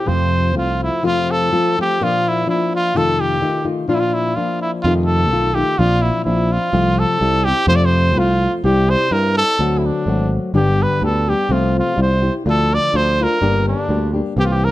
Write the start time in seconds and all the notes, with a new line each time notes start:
0.06 F2 C3 F3 A3 C4 F4 C5
0.54 C2 F3 A3 C4 F4
0.58 F4
0.83 E4
1.03 F2 C3 F3 A3 C4 F4
1.31 A4
1.52 F3 A3 C4 F4
1.79 F3 A3 C4 F4 G4
2.01 A#2 F3 A#3 D4 F4
2.29 E4
2.47 F3 A#3 D4 E4 F4
2.76 F4
2.95 F2 C3 D#3 A3 D#4 F4 A4
3.21 G4
3.42 D#3 A3 D#4 F4
3.65 D#3 A3 D#4 F4
3.88 A#2 F3 A#3 D4 F4
3.95 E4
4.00 F4
4.14 E4
4.36 F3 A#3 D4 F4
4.62 E4
4.82 F2 C3 D#3 A3 D#4 F4
5.06 A4
5.31 B1 D#3 A3 D#4 F4
5.54 D#3 A3 D#4 F4 G4
5.79 A#1 A#2 F3 C4 D4 F4
6.02 E4
6.25 A#1 F3 C4 D4 E4 F4
6.52 F4
6.73 C2 C3 F3 A3 C4 F4
6.99 A4
7.21 C2 G3 C4 E4 G4
7.45 C4 E4 G4
7.67 F2 C3 F3 A3 C4 F4 C5
7.76 D5
7.85 C5
8.15 C2 F3 A3 C4 F4
8.19 F4
8.64 C2 C3 G3 C4 E4 G4
8.90 C5
9.11 G2 G3 C4 E4 G4 A#4
9.38 A4
9.59 D2 D3 F#3 A3 C4 F#4
9.79 E4
9.86 D4
10.06 G#1 F#3 A3 C4 F#4
10.54 G1 G2 D3 G3 B3 D4 G4
10.83 B4
11.02 D2 G3 B3 D4 G4 A4
11.28 G3 B3 D4 G4
11.49 C2 C3 F3 A3 C4 F4
11.79 F4
11.96 C2 G3 C4 E4 G4
12.02 C5
12.22 C4 E4 G4
12.45 D2 D3 F3 A3 D4 F4
12.50 A4
12.75 D5
12.93 D2 F3 A3 D4 F4 C5
13.21 A3 D4 F4 A#4
13.41 G1 G2 D3 G3 A#3 D4 G4
13.68 D4
13.89 D2 G3 A#3 D4 G4
14.14 G3 A#3 D4 G4
14.37 C2 C3 E3 A#3 C4 G4
14.43 F4
14.52 G4
14.64 A#4